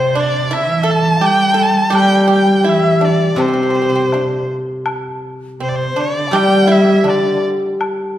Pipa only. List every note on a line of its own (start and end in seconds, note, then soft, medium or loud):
0.00 0.12 C4 medium
0.15 0.49 D4 medium
0.51 0.83 E4 medium
0.83 1.18 A4 medium
1.21 1.54 G4 medium
1.54 1.89 A4 medium
1.90 2.26 G4 medium
2.28 2.62 G4 medium
2.64 2.99 E4 medium
3.01 3.35 D4 medium
3.38 3.45 C4 medium
3.48 3.52 C4 soft
3.53 3.60 C4 soft
3.63 3.69 C4 soft
3.70 3.74 C4 soft
3.75 3.80 C4 soft
3.82 3.88 C4 soft
3.90 3.94 C4 soft
3.95 4.04 C4 soft
4.14 4.47 D4 soft
5.60 5.95 C4 medium
5.96 6.31 D4 medium
6.33 6.67 G4 medium
6.67 7.03 E4 medium
7.04 7.40 D4 medium